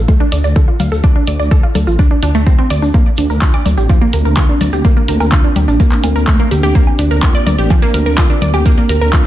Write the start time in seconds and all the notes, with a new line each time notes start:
0.08 A3, kick, shaker
0.20 D4
0.32 D2 D5, open hi-hat, shaker
0.44 D2 D5, shaker
0.56 A4, kick, shaker
0.68 F4
0.80 D2 F5, open hi-hat, low conga, shaker
0.92 D2 A4, shaker
1.04 D2 D4, kick, shaker
1.16 D4
1.27 D2 D5, open hi-hat, shaker
1.40 D2 D5, shaker
1.51 A4, kick, shaker
1.63 F4
1.75 D2 A4, open hi-hat, low conga, shaker
1.87 A1 F4, shaker
1.99 D4, kick, low conga, shaker
2.11 D4
2.23 D2 D4, open hi-hat, shaker
2.35 D2 A3, shaker
2.46 D2 C4, kick, shaker
2.59 C4
2.70 D2 D5, open hi-hat, shaker
2.82 D2 D4, shaker
2.94 A#3 C4 D4, kick, shaker
3.17 D2 D4, open hi-hat, shaker
3.30 D2 A#4, shaker
3.42 F4, kick, clap, shaker
3.54 D5, low woodblock
3.66 D2 D5, open hi-hat, low conga, shaker
3.77 A1 G4, shaker
3.89 D2 F3, kick, shaker
4.01 A#3
4.13 D2 A#4, open hi-hat, shaker
4.25 D2 A#4, shaker
4.36 D2 F4, kick, clap, low woodblock, shaker
4.49 D4
4.61 D2 D5, open hi-hat, low conga, shaker
4.72 D2 G4, shaker
4.85 D2 A#3, kick, shaker
4.97 A#3
5.08 D2 A#4, open hi-hat, shaker
5.20 D2 A#4, low woodblock, shaker
5.32 F4, kick, clap, shaker
5.44 D4
5.56 D2 G4, open hi-hat, low conga, shaker
5.68 A1 D4, shaker
5.80 D2 A#3, kick, low conga, shaker
5.92 A#3, clap
6.03 D2 A#3, open hi-hat, low woodblock, shaker
6.16 D2 A#4, shaker
6.27 D2 A3, kick, clap, shaker
6.39 A#3
6.51 D2 G4, open hi-hat, shaker
6.63 D2 G4, shaker
6.75 A#3, kick, shaker
6.87 low woodblock
6.99 D2 D4, open hi-hat, shaker
7.11 D2 A#4, shaker
7.23 D2 F4, kick, clap, shaker
7.35 D5
7.46 D2 D5, open hi-hat, low conga, shaker
7.58 A1 G4, shaker
7.70 D2 F3, kick, low woodblock, shaker
7.82 A#3
7.94 D2 A#4, open hi-hat, shaker
8.06 D2 A#4, shaker
8.18 D2 F4, kick, clap, shaker
8.30 D4
8.42 D2 D5, open hi-hat, low conga, shaker
8.53 D2 G4, low woodblock, shaker
8.65 A#3, kick, shaker
8.78 A#3
8.89 D2 A#4, open hi-hat, shaker
9.01 D2 A#4, shaker
9.13 D2 F4, kick, clap, shaker